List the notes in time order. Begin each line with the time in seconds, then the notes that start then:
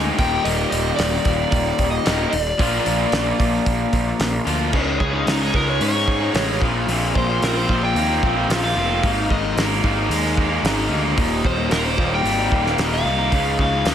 Already playing: D2 G#2 D#3 G#3 A#3 D#4 G#5
0.17 D#1 D#2 A#2 D#3 G3 A#3 D#4 G5, kick, open hi-hat
0.44 D#1 D#5, open hi-hat
0.71 D#1 D#5, open hi-hat
0.96 D#1 D5, snare, open hi-hat
1.25 D#1, kick, open hi-hat
1.51 D#1 D5, kick, open hi-hat
1.78 D#1, kick, open hi-hat
1.91 D#5
2.04 D#1 D#2 A#2 D#3 G3 A#3 D#4, snare, open hi-hat
2.31 D#1 D5, open hi-hat
2.58 A#1 A#2 F3 A#3 D4 F4, kick, open hi-hat
2.86 A#1, open hi-hat
3.12 A#1, snare, open hi-hat
3.39 A#1, kick, open hi-hat
3.66 A#1, kick, open hi-hat
3.93 A#1, kick, open hi-hat
4.20 A#1, snare, open hi-hat
4.45 D2 A#2 F3 A#3 D4 F4, open hi-hat
4.71 C#2 C#3 G#3 C#4 D#4 G#4, kick, crash
4.99 C#2 G#3 C#4 D#4 G#4, kick
5.13 C#4 D#4 G#4
5.26 C#2 C#3 G#3 C#4 D#4 G#4, snare, open hi-hat
5.42 G#4
5.53 C#2 G#3 C#4 D#4 G#4 A#4, kick
5.66 C#4 D#4 G#4 C#5
5.80 G#2 C#4 C#5, open hi-hat
5.93 C#4 D#4 G#4
6.08 D#4, kick
6.20 C#4 D#4 G#4
6.34 A1 C#3 G#3 C#4 D#4 G#4, snare, open hi-hat
6.61 A#1 A#2 F3 A#3 C4 F4, kick
6.74 A#3 C4 F4
6.88 A#1 A#2 F3 A#3 C4 F4, open hi-hat
7.15 A#1 F3 A#3 C4 F4 C5, kick
7.28 A#3 C4 F4
7.42 A#1 A#2 F3 A#3 C4 F4 A#4, snare, open hi-hat
7.57 C5
7.69 A#1 F3 A#3 C4 F4, kick
7.83 A#3 C4 F4 G5
7.95 D#2 A#3, open hi-hat
8.09 A#3 C4 F4
8.23 A#1 C4, kick
8.36 A#3 C4 F4
8.48 A#1 A#2 F3 A#3 C4 F4, snare, open hi-hat
8.64 F5
8.76 F1 F3 A#3 C4 F4
8.89 A#3 C4 F4
9.02 G#1 G#2 D#3 G#3 A#3 D#4, kick, open hi-hat
9.29 G#1 D#3 G#3 A#3 D#4 D#5, kick
9.43 G#3 A#3 D#4
9.56 G#1 G#2 D#3 G#3 A#3 D#4, snare, open hi-hat
9.83 G#1 D#3 G#3 A#3 D#4, kick
9.96 G#3 A#3 D#4
10.09 D#2 G#3, open hi-hat
10.23 G#3 A#3 D#4
10.37 A#3, kick
10.50 G#3 A#3 D#4
10.63 G#1 G#2 D#3 G#3 A#3 D#4, snare, open hi-hat
10.89 D2 D#3 G#3 A#3 D#4
11.03 G#3 A#3 D#4
11.17 D#1 D#2 A#2 D#3 G3 A#3 D#4, kick, open hi-hat
11.44 D#1 D#3 G3 A#3 D#4 C5, kick
11.57 D#3 G3 A#3 D#4
11.70 D#1 D#2 A#2 D#3 G3 A#3 D#4 A#4, snare, open hi-hat
11.85 C5
11.97 D#1 D#3 G3 A#3 D#4, kick
12.11 D#3 G3 A#3 D#4 G5
12.24 G#1 G3, open hi-hat
12.38 D#3 G3 A#3 D#4
12.52 D#1 A#3, kick
12.64 D#3 G3 A#3 D#4, snare
12.78 D#1 D#2 A#2 D#3 G3 A#3 D#4, snare, open hi-hat
12.94 F5
13.04 C2 D#3 G3 A#3 D#4
13.18 D#3 G3 A#3 D#4
13.32 C#2 C#3 G#3 C#4 D#4 G#4, kick, open hi-hat
13.59 C#2 G#3 C#4 D#4 G#4 F5, kick
13.72 C#4 D#4 G#4
13.85 C#2 C#3 G#3 C#4 D#4 G#4, snare, open hi-hat